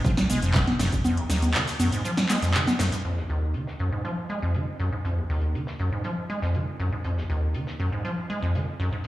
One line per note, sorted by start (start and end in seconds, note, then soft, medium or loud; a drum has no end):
0.04 0.12 F3 loud
0.04 kick loud
0.04 closed hi-hat medium
0.04 shaker soft
0.17 0.27 C2 loud
0.17 snare medium
0.17 shaker soft
0.30 0.88 F1 loud
0.30 0.40 G#3 loud
0.30 closed hi-hat medium
0.30 open hi-hat loud
0.30 ride medium
0.30 high conga soft
0.30 shaker medium
0.42 0.56 F2 loud
0.42 closed hi-hat medium
0.42 shaker soft
0.54 0.65 D#3 medium
0.54 kick loud
0.54 snare loud
0.54 clap loud
0.54 closed hi-hat medium
0.54 shaker soft
0.67 snare soft
0.67 closed hi-hat soft
0.67 high conga medium
0.79 0.90 F#2 loud
0.79 snare loud
0.79 snare medium
0.79 closed hi-hat medium
0.79 open hi-hat loud
0.79 ride medium
0.79 shaker medium
0.92 kick medium
0.92 closed hi-hat medium
0.92 shaker soft
1.04 1.19 F2 medium
1.04 closed hi-hat medium
1.04 high conga medium
1.04 shaker soft
1.17 1.24 D#2 loud
1.17 closed hi-hat medium
1.30 1.56 D#2 loud
1.30 snare medium
1.30 open hi-hat loud
1.30 open hi-hat medium
1.30 ride medium
1.30 shaker medium
1.42 closed hi-hat soft
1.42 closed hi-hat medium
1.42 high conga soft
1.42 shaker soft
1.54 1.65 D#3 medium
1.54 snare loud
1.54 clap loud
1.54 closed hi-hat medium
1.54 shaker soft
1.67 snare soft
1.67 open hi-hat medium
1.67 shaker soft
1.79 1.90 F#2 loud
1.79 closed hi-hat medium
1.79 open hi-hat loud
1.79 ride medium
1.79 high conga medium
1.79 shaker medium
1.92 2.03 G#2 medium
1.92 closed hi-hat medium
1.92 shaker soft
2.05 2.12 F3 loud
2.05 closed hi-hat medium
2.05 shaker soft
2.17 snare medium
2.17 snare soft
2.17 closed hi-hat soft
2.17 shaker soft
2.29 2.40 G#3 loud
2.29 snare medium
2.29 clap medium
2.29 closed hi-hat medium
2.29 open hi-hat loud
2.29 ride medium
2.29 high conga soft
2.29 shaker medium
2.42 2.56 F2 loud
2.42 snare soft
2.42 closed hi-hat medium
2.42 shaker soft
2.54 2.65 D#3 medium
2.54 clap loud
2.54 closed hi-hat medium
2.54 shaker soft
2.67 snare soft
2.67 closed hi-hat soft
2.67 high conga medium
2.67 shaker soft
2.79 2.90 F#2 loud
2.79 snare loud
2.79 snare medium
2.79 closed hi-hat medium
2.79 open hi-hat loud
2.79 ride medium
2.79 shaker medium
2.92 2.96 G#2 medium
2.92 snare soft
2.92 closed hi-hat medium
2.92 shaker soft
3.05 3.19 F2 medium
3.05 closed hi-hat medium
3.05 shaker soft
3.17 3.24 D#2 loud
3.17 snare soft
3.29 3.56 D#2 loud
3.29 closed hi-hat medium
3.29 shaker medium
3.43 shaker soft
3.54 3.65 D#3 medium
3.54 closed hi-hat medium
3.54 shaker soft
3.67 snare soft
3.67 shaker soft
3.79 3.90 F#2 loud
3.79 closed hi-hat medium
3.79 shaker medium
3.92 4.02 G#2 medium
3.92 shaker soft
4.05 4.12 F3 loud
4.05 closed hi-hat medium
4.05 shaker soft
4.18 shaker soft
4.29 4.40 G#3 loud
4.29 closed hi-hat medium
4.29 shaker medium
4.42 4.56 F2 loud
4.54 4.65 D#3 medium
4.54 closed hi-hat medium
4.54 shaker soft
4.79 4.90 F#2 loud
4.79 closed hi-hat medium
4.79 shaker medium
4.92 4.96 G#2 medium
4.92 shaker soft
5.05 5.19 F2 medium
5.05 closed hi-hat medium
5.17 5.24 D#2 loud
5.30 5.56 D#2 loud
5.30 open hi-hat medium
5.30 shaker medium
5.42 closed hi-hat soft
5.55 5.65 D#3 medium
5.55 closed hi-hat medium
5.55 shaker soft
5.67 snare soft
5.79 5.90 F#2 loud
5.79 closed hi-hat medium
5.92 6.03 G#2 medium
6.04 6.12 F3 loud
6.04 closed hi-hat medium
6.18 shaker soft
6.30 6.40 G#3 loud
6.30 closed hi-hat medium
6.42 6.56 F2 loud
6.42 snare soft
6.55 6.65 D#3 medium
6.55 closed hi-hat medium
6.80 6.90 F#2 loud
6.80 closed hi-hat medium
6.92 6.96 G#2 medium
7.04 7.19 F2 medium
7.04 closed hi-hat medium
7.17 7.24 D#2 loud
7.17 snare soft
7.30 7.56 D#2 loud
7.30 closed hi-hat medium
7.43 shaker soft
7.54 7.65 D#3 medium
7.54 closed hi-hat medium
7.54 shaker soft
7.67 snare soft
7.80 7.90 F#2 loud
7.80 closed hi-hat medium
7.92 8.03 G#2 medium
8.05 8.12 F3 loud
8.05 closed hi-hat medium
8.30 8.40 G#3 loud
8.30 closed hi-hat medium
8.42 8.56 F2 loud
8.55 8.65 D#3 medium
8.55 closed hi-hat medium
8.80 8.90 F#2 loud
8.80 closed hi-hat medium
8.92 8.96 G#2 medium
9.04 closed hi-hat medium